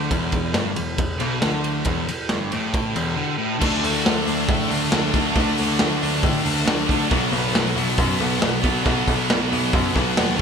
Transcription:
0.10 0.51 E1 medium
0.10 0.54 E2 loud
0.10 kick loud
0.10 ride medium
0.32 kick medium
0.32 ride medium
0.54 0.74 G1 medium
0.54 0.76 G2 loud
0.54 snare loud
0.54 ride medium
0.76 0.96 E1 medium
0.76 0.94 E2 medium
0.76 ride medium
0.98 1.18 E1 medium
0.98 1.15 E2 medium
0.98 kick loud
0.98 ride medium
1.19 1.41 B1 loud
1.19 1.41 B2 loud
1.19 ride medium
1.42 1.83 D2 medium
1.42 1.85 D3 loud
1.42 snare loud
1.42 ride medium
1.64 ride medium
1.85 2.06 E1 medium
1.85 2.07 E2 loud
1.85 kick loud
1.85 ride medium
2.08 2.29 E1 soft
2.08 muted overdriven electric guitar stroke medium
2.08 muted distorted electric guitar stroke medium
2.08 ride medium
2.29 2.50 G1 medium
2.29 2.52 G2 loud
2.29 snare loud
2.29 ride medium
2.51 2.93 A1 medium
2.51 2.94 A2 loud
2.51 ride medium
2.74 kick loud
2.74 ride medium
2.95 3.16 E1 loud
2.95 3.16 E2 loud
2.95 ride medium
3.16 3.37 D3 loud
3.38 3.58 A2 loud
3.58 3.77 D2 medium
3.58 4.67 D3 medium
3.58 4.69 A3 loud
3.58 7.07 D4 medium
3.58 5.34 A4 medium
3.58 7.07 E5 medium
3.58 kick loud
3.58 crash loud
3.63 4.67 D4 loud
3.83 3.99 D2 loud
3.83 open hi-hat medium
4.05 4.21 D2 medium
4.05 snare loud
4.05 open hi-hat medium
4.26 4.42 D2 loud
4.26 4.91 D3 medium
4.26 4.91 A3 medium
4.26 4.90 D4 medium
4.26 open hi-hat medium
4.48 4.64 A2 loud
4.48 kick loud
4.48 open hi-hat medium
4.68 4.86 D2 medium
4.68 4.89 D3 medium
4.68 4.90 A3 medium
4.68 4.89 D4 medium
4.68 open hi-hat medium
4.91 5.08 D2 loud
4.91 5.33 D3 medium
4.91 5.34 A3 loud
4.91 5.35 D4 medium
4.91 snare loud
4.91 open hi-hat medium
5.11 5.29 D2 medium
5.11 5.31 D3 medium
5.11 5.34 A3 medium
5.11 5.33 D4 medium
5.11 kick medium
5.11 snare soft
5.11 open hi-hat medium
5.35 5.51 D2 loud
5.35 6.43 D3 loud
5.35 6.44 A3 medium
5.35 6.42 D4 loud
5.35 7.08 B4 medium
5.35 kick loud
5.35 open hi-hat medium
5.58 5.74 D2 medium
5.58 open hi-hat medium
5.79 5.96 D2 medium
5.79 snare loud
5.79 open hi-hat medium
6.02 6.18 D2 medium
6.02 6.65 D3 medium
6.02 6.67 A3 medium
6.02 6.66 D4 medium
6.02 open hi-hat medium
6.23 6.39 A2 loud
6.23 kick loud
6.23 open hi-hat medium
6.43 6.61 D2 loud
6.43 6.64 D3 medium
6.43 6.65 A3 medium
6.43 6.65 D4 medium
6.43 open hi-hat medium
6.65 6.82 D2 loud
6.65 7.08 D3 medium
6.65 7.09 A3 medium
6.65 7.10 D4 loud
6.65 snare loud
6.65 open hi-hat medium
6.86 7.05 D2 medium
6.86 7.07 D3 medium
6.86 7.09 A3 medium
6.86 7.08 D4 medium
6.86 kick medium
6.90 open hi-hat medium
7.09 7.27 B1 loud
7.09 8.18 B2 loud
7.09 8.21 F#3 loud
7.09 10.36 B3 medium
7.09 10.36 F#4 medium
7.09 10.36 C#5 medium
7.09 kick loud
7.09 open hi-hat medium
7.13 8.18 B3 loud
7.32 7.48 B1 loud
7.32 open hi-hat medium
7.53 7.70 B1 medium
7.53 snare loud
7.53 open hi-hat medium
7.75 7.91 B1 medium
7.75 8.42 B2 medium
7.75 8.44 F#3 medium
7.75 8.40 B3 medium
7.75 open hi-hat medium
7.98 8.14 F#2 loud
7.98 kick loud
7.98 open hi-hat medium
8.19 8.36 B1 loud
8.19 8.41 F#3 medium
8.19 8.40 B3 loud
8.19 open hi-hat medium
8.23 8.37 B2 medium
8.39 8.58 B1 loud
8.39 8.81 B2 medium
8.39 8.84 F#3 medium
8.39 snare loud
8.39 open hi-hat medium
8.43 8.84 B2 medium
8.43 8.85 B3 medium
8.62 8.80 B1 medium
8.62 8.82 B2 medium
8.62 8.85 F#3 medium
8.62 8.83 B3 medium
8.62 kick loud
8.62 open hi-hat medium
8.83 9.02 B1 loud
8.83 9.93 B2 loud
8.83 9.95 F#3 medium
8.83 kick loud
8.83 open hi-hat medium
8.87 9.92 B3 loud
9.08 9.24 B1 loud
9.08 kick medium
9.08 open hi-hat medium
9.30 9.46 B1 medium
9.30 snare loud
9.30 open hi-hat medium
9.51 9.68 B1 medium
9.51 10.16 B2 medium
9.51 10.18 F#3 medium
9.51 10.16 B3 medium
9.51 open hi-hat medium
9.73 9.90 F#2 loud
9.73 kick loud
9.73 open hi-hat medium
9.93 10.11 B1 loud
9.93 10.13 B2 medium
9.93 10.16 F#3 medium
9.93 10.15 B3 medium
9.93 kick medium
9.93 open hi-hat medium
10.14 10.36 B2 medium
10.14 10.38 F#3 medium
10.14 10.38 B3 medium
10.14 snare loud
10.14 open hi-hat medium
10.18 10.34 D#2 loud
10.37 10.41 D3 loud
10.37 10.41 A3 medium

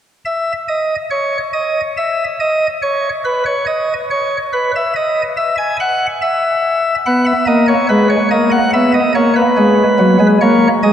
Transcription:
0.25 0.52 E5 medium
0.68 0.95 D#5 medium
1.10 1.38 C#5 medium
1.53 1.80 D#5 medium
1.97 2.24 E5 medium
2.40 2.67 D#5 medium
2.82 3.09 C#5 medium
3.25 3.44 B4 medium
3.46 3.64 C#5 medium
3.67 3.93 D#5 medium
4.10 4.37 C#5 medium
4.53 4.71 B4 medium
4.76 4.93 E5 medium
4.96 5.22 D#5 medium
5.37 5.55 E5 medium
5.58 5.76 G#5 medium
5.80 6.06 F#5 medium
6.22 6.95 E5 medium
7.06 7.33 B3 medium
7.06 7.25 F#5 medium
7.26 7.45 E5 medium
7.47 7.73 A#3 medium
7.47 7.66 D#5 medium
7.68 7.87 C#5 medium
7.89 8.16 G#3 medium
7.89 8.08 B4 medium
8.09 8.28 C#5 medium
8.31 8.58 A#3 medium
8.31 8.50 D#5 medium
8.51 8.70 F#5 medium
8.73 9.00 B3 medium
8.73 8.92 E5 medium
8.94 9.12 D#5 medium
9.15 9.41 A#3 medium
9.15 9.33 C#5 medium
9.36 10.27 B4 medium
9.57 9.83 G#3 medium
9.99 10.17 F#3 medium
10.20 10.38 G#3 medium
10.41 10.68 A#3 medium
10.41 10.67 C#5 medium
10.83 10.93 G#3 medium
10.83 10.93 D#5 medium

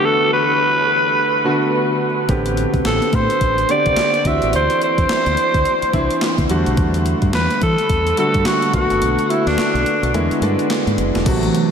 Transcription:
0.00 0.67 D3 medium
0.00 0.68 A3 medium
0.00 0.68 B3 medium
0.00 0.68 F#4 medium
0.05 0.33 A4 loud
0.33 1.97 B4 loud
1.44 2.06 D3 medium
1.44 2.06 A3 medium
1.44 2.07 B3 medium
1.44 2.07 F#4 loud
2.29 2.64 A1 medium
2.29 3.10 D3 medium
2.29 3.10 B3 medium
2.29 3.11 C4 medium
2.29 3.11 G4 medium
2.29 kick loud
2.29 closed hi-hat medium
2.46 closed hi-hat medium
2.57 closed hi-hat medium
2.74 2.83 C2 medium
2.74 kick medium
2.74 closed hi-hat soft
2.85 2.98 A1 loud
2.85 3.16 A4 medium
2.85 snare loud
2.85 clap medium
2.85 closed hi-hat medium
3.02 closed hi-hat medium
3.13 3.26 A2 loud
3.13 3.73 C5 medium
3.13 kick medium
3.13 closed hi-hat medium
3.30 closed hi-hat soft
3.41 3.63 A1 medium
3.41 kick medium
3.41 closed hi-hat medium
3.58 closed hi-hat soft
3.69 4.25 D3 medium
3.69 4.25 B3 medium
3.69 4.24 C4 medium
3.69 4.26 G4 medium
3.69 4.29 D5 loud
3.69 closed hi-hat medium
3.86 3.95 C2 medium
3.86 kick medium
3.86 closed hi-hat medium
3.97 snare loud
3.97 clap medium
3.97 closed hi-hat medium
4.14 closed hi-hat medium
4.25 4.38 D2 loud
4.25 5.16 E3 medium
4.25 5.16 C4 medium
4.25 5.16 D4 medium
4.25 5.17 F#4 medium
4.25 4.54 E5 loud
4.25 kick medium
4.25 closed hi-hat medium
4.42 4.51 A1 medium
4.42 closed hi-hat soft
4.53 4.67 D2 loud
4.53 4.80 C5 loud
4.53 closed hi-hat medium
4.70 closed hi-hat medium
4.82 6.47 C5 loud
4.82 closed hi-hat medium
4.98 5.07 E2 medium
4.98 kick medium
4.98 closed hi-hat soft
5.09 muted fingered electric bass stroke soft
5.09 snare medium
5.09 clap medium
5.09 closed hi-hat medium
5.26 5.35 D2 medium
5.26 closed hi-hat medium
5.37 closed hi-hat medium
5.54 5.63 D2 medium
5.54 kick loud
5.54 closed hi-hat medium
5.65 closed hi-hat medium
5.82 muted fingered electric bass stroke soft
5.82 closed hi-hat medium
5.93 6.07 C2 medium
5.93 6.49 E3 medium
5.93 6.49 C4 medium
5.93 6.50 D4 medium
5.93 6.50 E4 loud
5.93 kick medium
5.93 closed hi-hat medium
6.11 closed hi-hat soft
6.22 snare loud
6.22 clap loud
6.22 closed hi-hat medium
6.38 6.47 D2 medium
6.38 kick medium
6.38 closed hi-hat medium
6.50 6.63 E2 loud
6.50 7.40 D3 medium
6.50 7.41 G3 medium
6.50 7.41 A3 medium
6.50 7.41 F#4 loud
6.50 closed hi-hat medium
6.66 6.75 B1 medium
6.66 closed hi-hat medium
6.77 7.13 E2 loud
6.77 kick loud
6.77 closed hi-hat medium
6.94 closed hi-hat medium
7.06 closed hi-hat medium
7.22 7.31 G2 medium
7.22 kick medium
7.22 closed hi-hat soft
7.33 7.47 E2 medium
7.33 7.60 B4 loud
7.33 snare loud
7.33 clap medium
7.33 closed hi-hat medium
7.50 closed hi-hat soft
7.61 7.75 E3 medium
7.61 8.15 A4 loud
7.61 kick medium
7.61 closed hi-hat medium
7.78 closed hi-hat soft
7.90 8.12 E2 medium
7.90 kick loud
7.90 closed hi-hat medium
8.07 closed hi-hat soft
8.17 8.72 D3 medium
8.17 8.74 G3 medium
8.17 8.73 A3 medium
8.17 8.73 F#4 medium
8.17 8.48 A4 loud
8.17 closed hi-hat medium
8.34 8.43 G2 medium
8.34 kick medium
8.34 closed hi-hat medium
8.45 8.74 F#4 loud
8.45 snare loud
8.45 clap loud
8.45 closed hi-hat medium
8.62 closed hi-hat medium
8.73 8.87 B1 medium
8.73 9.65 D3 medium
8.73 9.65 A3 medium
8.73 9.65 B3 medium
8.73 9.32 F#4 loud
8.73 9.65 F#4 medium
8.73 kick medium
8.73 closed hi-hat medium
8.90 8.99 F#1 medium
8.90 closed hi-hat medium
9.02 9.15 B1 medium
9.02 closed hi-hat medium
9.19 closed hi-hat medium
9.30 9.49 E4 medium
9.30 closed hi-hat medium
9.46 9.55 D2 medium
9.46 10.31 D4 medium
9.46 snare medium
9.46 closed hi-hat soft
9.58 muted fingered electric bass stroke soft
9.58 snare loud
9.58 clap medium
9.58 closed hi-hat medium
9.74 9.83 B1 medium
9.74 closed hi-hat soft
9.86 closed hi-hat medium
10.03 10.11 B1 medium
10.03 closed hi-hat soft
10.14 10.27 E2 medium
10.14 10.37 D3 medium
10.14 10.38 G#3 medium
10.14 10.38 B3 medium
10.14 10.38 E4 loud
10.14 closed hi-hat medium
10.31 muted fingered electric bass stroke soft
10.31 closed hi-hat soft
10.41 10.55 G2 medium
10.41 11.03 D3 medium
10.41 11.04 G#3 medium
10.41 11.04 B3 medium
10.41 11.04 D4 loud
10.41 closed hi-hat medium
10.59 closed hi-hat medium
10.70 snare loud
10.70 clap loud
10.70 closed hi-hat medium
10.87 10.96 G#2 medium
10.87 closed hi-hat medium
10.98 11.11 F#1 medium
10.98 closed hi-hat medium
11.15 11.24 E1 medium
11.15 snare medium
11.15 closed hi-hat medium
11.26 11.48 A1 loud
11.26 11.71 C3 medium
11.26 11.71 E3 medium
11.26 11.71 F#3 medium
11.26 11.71 A3 medium
11.26 11.71 B3 medium
11.26 11.71 F#4 loud
11.26 kick loud
11.26 closed hi-hat medium
11.26 crash loud
11.26 tambourine medium
11.43 closed hi-hat medium
11.55 closed hi-hat medium

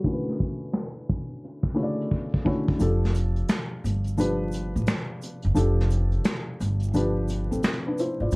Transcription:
0.04 1.37 D3 medium
0.04 1.37 A3 medium
0.04 1.38 C#4 medium
0.04 1.38 E4 medium
0.04 1.38 F#4 medium
0.04 0.14 A#4 medium
0.04 kick loud
0.04 closed hi-hat medium
0.13 1.42 B4 medium
0.29 snare soft
0.40 kick medium
0.60 closed hi-hat soft
0.73 finger snap medium
0.73 snare medium
0.73 closed hi-hat medium
1.09 kick medium
1.09 closed hi-hat medium
1.28 closed hi-hat soft
1.44 closed hi-hat medium
1.63 kick medium
1.74 2.42 C#3 medium
1.74 2.42 D3 medium
1.74 2.42 A3 medium
1.74 2.42 E4 medium
1.74 2.43 F#4 medium
1.74 1.85 C#5 medium
1.74 closed hi-hat medium
1.83 2.46 D5 medium
2.01 closed hi-hat soft
2.11 kick soft
2.34 kick medium
2.45 2.78 D3 medium
2.45 2.79 A3 medium
2.45 2.79 C#4 medium
2.45 2.79 E4 medium
2.45 2.80 F#4 medium
2.45 2.80 C#5 medium
2.45 kick medium
2.68 kick medium
2.79 3.41 F1 medium
2.79 4.12 F3 medium
2.79 4.13 D4 medium
2.79 4.13 G4 medium
2.79 4.14 A4 medium
2.79 closed hi-hat medium
2.79 shaker medium
3.05 snare soft
3.15 closed hi-hat medium
3.15 shaker soft
3.36 closed hi-hat soft
3.49 finger snap medium
3.49 snare loud
3.49 closed hi-hat medium
3.49 shaker medium
3.84 4.71 G1 medium
3.84 closed hi-hat medium
3.84 shaker soft
4.04 closed hi-hat soft
4.04 shaker soft
4.17 5.51 F3 medium
4.17 5.51 D4 medium
4.17 5.51 G4 medium
4.17 5.52 B4 loud
4.17 closed hi-hat medium
4.17 shaker medium
4.52 closed hi-hat medium
4.52 shaker soft
4.76 4.86 A1 medium
4.76 shaker soft
4.87 finger snap loud
4.87 snare loud
4.87 closed hi-hat medium
4.87 shaker medium
5.22 closed hi-hat medium
5.22 shaker soft
5.42 5.55 F#1 medium
5.42 closed hi-hat soft
5.54 6.17 F1 medium
5.54 6.88 F3 medium
5.54 6.88 D4 medium
5.54 6.89 G4 medium
5.54 6.89 A4 medium
5.54 closed hi-hat medium
5.54 shaker medium
5.81 snare soft
5.90 closed hi-hat soft
5.90 shaker soft
6.12 closed hi-hat soft
6.24 finger snap medium
6.24 snare loud
6.24 closed hi-hat medium
6.24 shaker medium
6.60 7.48 G1 medium
6.60 closed hi-hat medium
6.60 shaker soft
6.80 closed hi-hat soft
6.80 shaker medium
6.94 8.27 F3 medium
6.94 7.29 D4 medium
6.94 7.29 G4 medium
6.94 7.30 B4 medium
6.94 closed hi-hat medium
6.94 shaker medium
7.28 closed hi-hat medium
7.28 shaker soft
7.51 7.62 A1 medium
7.51 7.84 C4 medium
7.51 7.84 A4 medium
7.51 shaker medium
7.63 finger snap loud
7.63 snare loud
7.63 closed hi-hat medium
7.63 shaker medium
7.87 7.98 D4 medium
7.87 7.98 B4 medium
7.98 8.20 E4 medium
7.98 8.20 C5 medium
7.98 closed hi-hat medium
7.98 shaker soft
8.20 8.31 G#1 medium
8.20 8.36 F4 soft
8.20 8.36 D5 medium
8.31 8.36 G1 loud
8.31 shaker medium

